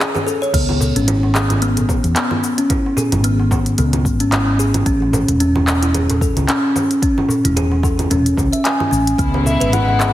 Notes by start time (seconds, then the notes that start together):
0.00 G#4, clap, shaker
0.15 G#4, darbuka ka, low conga, shaker
0.27 A4, shaker
0.42 C#5, shaker
0.54 C#2 B3, kick, closed hi-hat, crash, shaker
0.69 darbuka tek, low conga
0.80 darbuka dum, shaker
0.96 G#1 C#4, closed hi-hat, shaker
1.08 E4, closed hi-hat, low conga, shaker
1.23 darbuka ka
1.34 G#4, clap, darbuka tek, shaker
1.50 closed hi-hat, darbuka tek, low conga, shaker
1.62 B3, closed hi-hat, shaker
1.77 closed hi-hat, darbuka dum, shaker
1.89 kick, darbuka ka, low conga, shaker
2.04 E2, closed hi-hat, shaker
2.16 B3, clap, closed hi-hat, shaker
2.31 low conga
2.44 darbuka tek, shaker
2.58 C#4, closed hi-hat, shaker
2.70 E4, kick, closed hi-hat, low conga, shaker
2.86 darbuka tek
2.97 G#4, darbuka dum, shaker
3.12 G#1, closed hi-hat, low conga, shaker
3.24 B3, closed hi-hat, shaker
3.39 darbuka ka
3.51 kick, darbuka tek, low conga, shaker
3.66 closed hi-hat, shaker
3.78 C#2 B3, closed hi-hat, darbuka dum, shaker
3.93 closed hi-hat, low conga, shaker
4.05 G#1, kick, darbuka ka, shaker
4.20 C#4, closed hi-hat, shaker
4.32 E4, clap, closed hi-hat, low conga, shaker
4.48 darbuka ka
4.59 G#4, shaker
4.74 closed hi-hat, low conga, shaker
4.86 A1 C#4, kick, closed hi-hat, shaker
5.02 darbuka tek
5.13 darbuka dum, low conga, shaker
5.28 E1, closed hi-hat, shaker
5.40 C#4, closed hi-hat, shaker
5.55 darbuka ka, low conga
5.67 clap, darbuka tek, shaker
5.82 E4, closed hi-hat, darbuka tek, shaker
5.94 G#4, closed hi-hat, low conga, shaker
6.10 closed hi-hat, darbuka dum, shaker
6.21 A4, kick, darbuka ka, shaker
6.36 C#2, closed hi-hat, low conga, shaker
6.48 C#4, clap, closed hi-hat, shaker
6.76 darbuka tek, low conga, shaker
6.91 closed hi-hat, shaker
7.02 C#4, kick, closed hi-hat, shaker
7.18 darbuka tek, low conga
7.29 darbuka dum, shaker
7.45 E1 E4, closed hi-hat, shaker
7.57 G#4, closed hi-hat, low conga, shaker
7.72 darbuka ka
7.83 A4, kick, darbuka tek, shaker
7.99 closed hi-hat, low conga, shaker
8.11 E1 C#4, closed hi-hat, darbuka dum, shaker
8.26 closed hi-hat, shaker
8.37 C#2, kick, darbuka ka, low conga, shaker
8.53 E5, closed hi-hat, shaker
8.64 G#5, clap, closed hi-hat, shaker
8.80 darbuka ka, low conga
8.91 A1 C#4, shaker
9.07 closed hi-hat, shaker
9.18 C#2 C#3 E3 G#3 B3 E4, kick, closed hi-hat, shaker
9.34 darbuka tek, low conga
9.46 E5, darbuka dum, shaker
9.60 G#1 B4, closed hi-hat, shaker
9.73 E4 F#5, closed hi-hat, low conga, shaker
9.89 darbuka ka
10.00 G#4, clap, darbuka tek, shaker